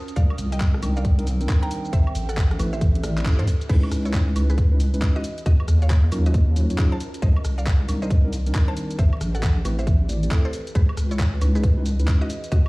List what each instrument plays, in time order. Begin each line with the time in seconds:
Already playing: ambient pad D#3 C4 G4 A#4 C5 D#6
0.08 closed hi-hat, shaker
0.16 wobble bass C2, synth pluck D5 F5, kick, closed hi-hat, shaker
0.30 ambient pad G5, high woodblock
0.38 wobble bass C2, open hi-hat, shaker
0.52 synth pluck D#5 G5, cross-stick, closed hi-hat, shaker
0.60 kick, clap, shaker
0.74 cross-stick
0.83 wobble bass C2, tine electric piano G3 C4 D4 D#4 A#4, open hi-hat, high woodblock, shaker
0.97 tine electric piano G3 C4 D4 D#4 A#4, synth pluck D5 F5, shaker
1.05 kick, closed hi-hat, shaker
1.19 tine electric piano G3 C4 D4 D#4 A#4, closed hi-hat
1.27 open hi-hat, shaker
1.41 tine electric piano G3 C4 D4 D#4 A#4, closed hi-hat, shaker
1.49 kick, clap, shaker
1.62 synth pluck G5 A#5, cross-stick, closed hi-hat
1.71 open hi-hat, shaker
1.85 shaker
1.93 wobble bass A1, ambient pad C4 E4 G4 B4, synth pluck C5 E5, kick, closed hi-hat, shaker
1.98 ambient pad A4
2.07 high woodblock
2.15 wobble bass A1, open hi-hat, shaker
2.29 synth pluck A4 F#5, cross-stick, closed hi-hat, shaker
2.34 ambient pad E5, kick, clap, shaker
2.51 cross-stick, closed hi-hat
2.59 wobble bass A1, tine electric piano A3 C4 E4 G4 B4, open hi-hat, high woodblock, shaker
2.73 tine electric piano A3 C4 E4 G4 C5, synth pluck C5 E5, shaker
2.81 kick, closed hi-hat, shaker
2.95 closed hi-hat
3.03 tine electric piano A3 C4 E4 G4 D5, cross-stick, open hi-hat, shaker
3.17 tine electric piano A3 C4 E4 G4 D5, clap, closed hi-hat, shaker
3.25 tine electric piano A3 C4 E4 G4 A4, kick, clap, shaker
3.39 wobble bass A2, synth pluck A4 C5, closed hi-hat
3.47 kick, open hi-hat, shaker
3.61 closed hi-hat, shaker
3.69 wobble bass C#2, ambient pad E3 G#4 B4 D#5, tine electric piano G#3 C#4 D#4 E4 B4, synth pluck G#4 B4, kick, closed hi-hat, crash, shaker
3.83 high woodblock
3.92 wobble bass C#2, cross-stick, open hi-hat, shaker
4.05 synth pluck E4 C#5, closed hi-hat, shaker
4.14 kick, clap, closed hi-hat, shaker
4.28 cross-stick
4.36 wobble bass C#2, tine electric piano G#3 C#4 D#4 E4 B4, open hi-hat, high woodblock, shaker
4.49 tine electric piano G#3 C#4 D#4 E4 B4, synth pluck G#4 B4, closed hi-hat, shaker
4.58 kick, closed hi-hat, shaker
4.72 tine electric piano G#3 C#4 D#4 E4 B4
4.80 open hi-hat, shaker
4.94 tine electric piano G#3 C#4 D#4 E4 B4, closed hi-hat, shaker
5.02 kick, clap, closed hi-hat, shaker
5.16 synth pluck F#4 D#5
5.24 ambient pad C#4 F4 F#4 A#4, open hi-hat, shaker
5.38 closed hi-hat, shaker
5.46 wobble bass D#2, synth pluck F#4 D#5, kick, closed hi-hat, shaker
5.60 high woodblock
5.68 wobble bass D#2, cross-stick, open hi-hat, shaker
5.82 synth pluck C#5 F5, closed hi-hat, shaker
5.90 kick, clap, closed hi-hat, shaker
6.04 cross-stick
6.12 wobble bass D#2, tine electric piano F#3 C#4 D#4 F4 A#4, open hi-hat, high woodblock, shaker
6.26 tine electric piano F#3 C#4 D#4 F4, synth pluck F#4 D#5, closed hi-hat, shaker
6.34 kick, closed hi-hat, shaker
6.56 tine electric piano F#3 C#4 D#4 F4 C#5, open hi-hat, shaker
6.70 tine electric piano F#3 C#4 D#4 F4 C#5, closed hi-hat, shaker
6.78 tine electric piano F#3 C#4 D#4 F4 G#4, kick, clap, closed hi-hat, shaker
6.92 synth pluck C5 A5
7.00 ambient pad D#3 G4 D5, open hi-hat, shaker
7.14 closed hi-hat, shaker
7.22 wobble bass C2, synth pluck C5 D#5, kick, closed hi-hat, shaker
7.36 high woodblock
7.44 wobble bass C2, cross-stick, open hi-hat, shaker
7.58 synth pluck D5 F5, closed hi-hat, shaker
7.66 kick, clap, closed hi-hat, shaker
7.80 cross-stick
7.88 wobble bass C2, tine electric piano G3 C4 D4 D#4 A#4, open hi-hat, high woodblock, shaker
8.02 tine electric piano G3 C4 D4 D#4 A#4, synth pluck C5 D#5, closed hi-hat, shaker
8.10 kick, closed hi-hat, shaker
8.25 tine electric piano G3 C4 D4 D#4 A#4
8.33 open hi-hat, shaker
8.46 tine electric piano G3 C4 D4 D#4 A#4, closed hi-hat, shaker
8.54 kick, clap, closed hi-hat, shaker
8.68 synth pluck C5 A5
8.77 open hi-hat, shaker
8.91 closed hi-hat, shaker
8.99 wobble bass A1, ambient pad E3 C4 B4, synth pluck C5 E5, kick, closed hi-hat, shaker
9.13 high woodblock
9.21 wobble bass A1, cross-stick, open hi-hat, shaker
9.35 synth pluck A4 F#5, closed hi-hat, shaker
9.43 kick, clap, closed hi-hat, shaker
9.57 cross-stick
9.65 wobble bass A1, tine electric piano A3 C4 E4 G4 B4, open hi-hat, high woodblock, shaker
9.79 tine electric piano A3 C4 E4 G4 C5, synth pluck C5 E5, closed hi-hat, shaker
9.87 kick, closed hi-hat, shaker
10.09 tine electric piano A3 C4 E4 G4 D5, open hi-hat, shaker
10.23 tine electric piano A3 C4 E4 G4 D5, closed hi-hat, shaker
10.31 tine electric piano A3 C4 E4 G4 A4, kick, clap, closed hi-hat, shaker
10.45 synth pluck A4 C5
10.53 open hi-hat, shaker
10.67 closed hi-hat, shaker
10.75 wobble bass C#2, ambient pad G#4 D#5, synth pluck G#4 B4, kick, closed hi-hat, shaker
10.89 high woodblock
10.97 wobble bass C#2, cross-stick, open hi-hat, shaker
11.11 synth pluck E4 C#5, closed hi-hat, shaker
11.19 kick, clap, closed hi-hat, shaker
11.33 cross-stick
11.41 wobble bass C#2, tine electric piano G#3 C#4 D#4 E4 B4, open hi-hat, high woodblock, shaker
11.55 tine electric piano G#3 C#4 D#4 E4 B4, synth pluck G#4 B4, closed hi-hat, shaker
11.63 kick, closed hi-hat, shaker
11.78 tine electric piano G#3 C#4 D#4 E4 B4
11.86 open hi-hat, shaker
11.99 tine electric piano G#3 C#4 D#4 E4 B4, closed hi-hat, shaker
12.08 kick, clap, closed hi-hat, shaker
12.21 synth pluck F#4 D#5
12.29 ambient pad C#4 F4 F#4 A#4, open hi-hat, shaker
12.44 closed hi-hat, shaker
12.52 wobble bass D#2, synth pluck F#4 D#5, kick, closed hi-hat, shaker